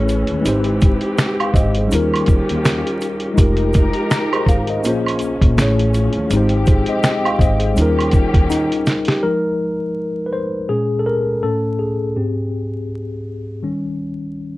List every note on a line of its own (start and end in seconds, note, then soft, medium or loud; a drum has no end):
0.00 0.23 A1 loud
0.00 1.89 E3 medium
0.00 0.44 A3 medium
0.00 0.45 A3 medium
0.00 0.43 C#4 medium
0.00 0.45 C#4 medium
0.00 0.46 E4 medium
0.00 0.46 G#4 medium
0.00 0.46 C#5 medium
0.09 closed hi-hat medium
0.09 shaker soft
0.27 0.43 D#2 medium
0.27 closed hi-hat soft
0.41 1.86 G#3 medium
0.41 1.87 C4 medium
0.41 1.88 D#4 medium
0.45 0.96 G#1 medium
0.45 1.90 C4 medium
0.45 1.90 G4 medium
0.45 1.18 G4 medium
0.45 1.18 C5 medium
0.45 closed hi-hat medium
0.45 shaker medium
0.64 closed hi-hat soft
0.81 kick loud
0.81 closed hi-hat medium
0.81 shaker soft
1.01 closed hi-hat soft
1.18 finger snap medium
1.18 snare loud
1.18 closed hi-hat medium
1.18 shaker medium
1.40 1.55 F5 medium
1.40 closed hi-hat soft
1.40 high woodblock medium
1.54 1.86 G#1 medium
1.54 1.75 C5 medium
1.54 1.75 D#5 medium
1.54 kick medium
1.54 closed hi-hat medium
1.54 shaker soft
1.75 2.12 G#4 medium
1.75 2.11 C5 medium
1.75 closed hi-hat medium
1.88 2.42 D#2 medium
1.88 3.33 G3 medium
1.88 3.34 C#4 medium
1.88 3.36 C#4 medium
1.88 3.35 D#4 medium
1.88 3.36 G4 medium
1.88 shaker medium
1.92 3.36 D#3 medium
1.92 3.36 F4 medium
1.92 3.36 A#4 medium
1.92 closed hi-hat medium
2.14 closed hi-hat soft
2.14 high woodblock medium
2.26 kick medium
2.26 closed hi-hat medium
2.26 shaker soft
2.49 2.82 D#2 medium
2.49 closed hi-hat soft
2.65 finger snap medium
2.65 snare loud
2.65 closed hi-hat medium
2.65 shaker medium
2.87 closed hi-hat soft
3.01 closed hi-hat medium
3.01 shaker soft
3.20 closed hi-hat soft
3.34 4.79 G#3 medium
3.34 4.80 D#4 medium
3.34 4.81 F4 medium
3.34 shaker medium
3.38 3.89 F1 loud
3.38 4.83 F3 medium
3.38 4.83 G#3 medium
3.38 4.83 D#4 medium
3.38 4.83 G4 medium
3.38 4.10 G4 medium
3.38 4.83 A#4 medium
3.38 4.11 A#4 medium
3.38 kick loud
3.38 closed hi-hat loud
3.57 closed hi-hat soft
3.73 kick medium
3.73 closed hi-hat medium
3.73 shaker soft
3.93 closed hi-hat medium
4.11 finger snap medium
4.11 snare loud
4.11 closed hi-hat medium
4.11 shaker medium
4.33 4.47 G#4 soft
4.33 4.47 C5 medium
4.33 closed hi-hat soft
4.33 high woodblock medium
4.46 4.84 G#1 medium
4.46 4.68 F5 medium
4.46 kick medium
4.46 closed hi-hat medium
4.46 shaker soft
4.67 4.87 C5 medium
4.67 5.04 D#5 medium
4.67 closed hi-hat soft
4.84 5.35 A#1 medium
4.84 7.74 F3 medium
4.84 5.56 A#3 medium
4.84 5.57 A#3 medium
4.84 5.56 C#4 medium
4.84 5.58 C#4 medium
4.84 5.58 F4 medium
4.84 5.59 G#4 medium
4.84 closed hi-hat medium
4.84 shaker medium
4.88 5.59 C5 medium
5.06 closed hi-hat medium
5.06 high woodblock medium
5.19 closed hi-hat medium
5.19 shaker soft
5.41 5.55 A#1 medium
5.41 kick medium
5.41 closed hi-hat soft
5.57 6.08 A1 loud
5.57 6.29 A3 medium
5.57 6.31 A3 medium
5.57 6.29 C#4 medium
5.57 6.31 C#4 medium
5.57 6.32 E4 medium
5.57 finger snap medium
5.57 snare loud
5.57 closed hi-hat medium
5.57 shaker medium
5.61 6.32 G#4 medium
5.61 6.33 C#5 medium
5.79 closed hi-hat medium
5.94 closed hi-hat medium
5.94 shaker soft
6.13 6.29 D#2 medium
6.13 closed hi-hat soft
6.30 6.81 G#1 loud
6.30 7.73 G#3 medium
6.30 7.75 C4 medium
6.30 7.74 C4 medium
6.30 7.75 D#4 medium
6.30 7.75 G4 medium
6.30 closed hi-hat medium
6.30 shaker medium
6.35 6.68 G4 medium
6.35 6.66 C5 medium
6.49 closed hi-hat soft
6.66 6.88 G#4 medium
6.66 6.87 C5 medium
6.66 kick medium
6.66 closed hi-hat medium
6.66 shaker soft
6.86 7.04 C5 medium
6.86 7.03 D#5 medium
6.86 closed hi-hat soft
7.03 7.25 D#5 medium
7.03 7.25 G5 medium
7.03 finger snap medium
7.03 snare loud
7.03 closed hi-hat medium
7.03 shaker medium
7.25 7.40 F5 medium
7.25 closed hi-hat soft
7.25 high woodblock medium
7.39 7.72 G#1 medium
7.39 7.58 C5 medium
7.39 7.60 D#5 medium
7.39 kick medium
7.39 closed hi-hat medium
7.39 shaker soft
7.59 7.95 G#4 medium
7.59 7.95 C5 medium
7.59 closed hi-hat soft
7.74 8.28 D#2 medium
7.74 9.21 D#3 medium
7.74 9.19 G3 medium
7.74 9.20 C#4 medium
7.74 9.21 C#4 medium
7.74 8.49 D#4 medium
7.74 9.21 F4 medium
7.74 9.21 G4 medium
7.74 closed hi-hat medium
7.74 shaker medium
7.80 9.22 F4 medium
7.80 9.22 A#4 medium
7.99 closed hi-hat soft
7.99 high woodblock medium
8.11 kick medium
8.11 closed hi-hat medium
8.11 shaker soft
8.34 8.67 D#2 medium
8.34 kick medium
8.34 closed hi-hat soft
8.50 9.09 D#4 medium
8.50 closed hi-hat medium
8.50 shaker medium
8.72 closed hi-hat soft
8.86 snare medium
8.86 closed hi-hat medium
8.86 shaker soft
9.05 9.24 G4 medium
9.05 snare medium
9.05 closed hi-hat soft
9.23 9.74 F3 soft
9.23 9.74 G#3 soft
9.23 9.75 D#4 soft
9.23 10.23 A#4 medium
10.26 10.32 B4 medium
10.33 10.70 C5 medium
10.69 11.20 A#2 soft
10.69 11.20 G#3 soft
10.69 11.21 C#4 soft
10.69 11.01 G#4 medium
10.99 11.06 A4 medium
11.06 11.40 A#4 medium
11.43 12.12 A2 medium
11.43 12.13 A3 soft
11.43 12.13 C#4 soft
11.43 11.80 A4 medium
11.79 12.85 G#4 medium
12.16 13.58 G#2 soft
12.16 13.59 C4 medium
12.16 13.58 G4 soft
13.63 14.58 D#3 soft
13.63 14.58 G3 soft
13.63 14.58 C#4 medium